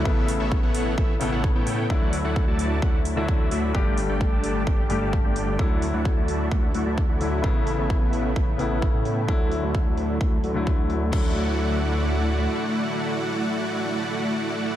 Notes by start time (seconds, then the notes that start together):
Already playing: A3 E4
0.04 A1 C#3 A3 B3 E4 A4 C#5 E5, kick
0.28 open hi-hat
0.40 A1 B3 E4 A4 C#5 E5
0.52 kick
0.63 A1 B3 E4 A4 C#5 F#5
0.75 open hi-hat
0.98 A1 B3 E4 C#5 E5, kick
1.20 A1 C#3 A3 B3 E4 A4 C#5 G5, open hi-hat
1.32 A1 B3 E4 A4 C#5 F#5
1.44 kick
1.55 A2 B3 E4 A4 C#5 G5
1.67 open hi-hat
1.89 D2 D3 F#3 A3 E4 F#4 D5, kick
2.13 open hi-hat
2.25 D2 A3 E4 F#4 D5 F#5
2.36 kick
2.48 D2 A3 E4 F#4 D5 A5
2.59 open hi-hat
2.82 D2 A3 E4 F#4 F#5, kick
3.05 open hi-hat
3.16 D2 D3 F#3 A3 E4 F#4 D5 E5
3.28 kick
3.51 D2 A3 E4 F#4 D5 E5, open hi-hat
3.73 G1 G2 D3 G3 A3 D4 G4 D5 G5, kick
3.98 open hi-hat
4.09 G1 A3 D4 G4 D5 G5
4.21 kick
4.32 G1 A3 D4 G4 D5 A5
4.44 open hi-hat
4.67 G1, kick
4.89 G1 G2 D3 G3 A3 D4 G4 D5 G5, open hi-hat
5.01 G1 A3 D4 G4 D5 A5
5.13 kick
5.25 G1 A3 D4 G4 D5 G5
5.36 open hi-hat
5.58 D2 D3 F#3 A3 E4 F#4 D5 F#5, kick
5.82 open hi-hat
5.94 D2 A3 E4 F#4 D5 F#5
6.05 kick
6.17 D2 A3 E4 F#4 D5 A5
6.28 open hi-hat
6.51 D2 A3 F#4 F#5, kick
6.74 D2 A3 E4 F#4 D5 F#5, open hi-hat
6.86 D2 A3 E4 F#4 D5 A5
6.98 kick
7.09 D2 A3 E4 F#4 D5 F#5
7.20 D3 F#3 A3 E4, open hi-hat
7.42 A1 C#3 A3 B3 E4 A4 C#5 E5, kick
7.67 open hi-hat
7.78 A1 B3 E4 A4 C#5 E5
7.90 kick
8.01 A1 B3 E4 A4 C#5 F#5
8.13 open hi-hat
8.36 A1 E4, kick
8.58 A1 C#3 A3 B3 E4 A4 C#5 G5, open hi-hat
8.71 A1 B3 E4 A4 C#5 F#5
8.82 kick
8.94 A2 B3 E4 A4 C#5 G5
9.05 open hi-hat
9.27 D2 D3 F#3 A3 E4 F#4 F#5, kick
9.51 open hi-hat
9.63 D2 A3 E4 F#4 D5 F#5
9.75 kick
9.86 D2 A3 E4 F#4 D5 A5
9.97 open hi-hat
10.21 D2, kick
10.44 D2 A3 E4 F#4 D5 F#5, open hi-hat
10.54 D2 D3 F#3 A3 E4 F#4 D5 A5
10.67 kick
10.78 D2 A3 E4 F#4 D5 F#5
10.90 open hi-hat
11.11 D2 D3 F#3 A3 E4 F#4 D5 F#5, kick, crash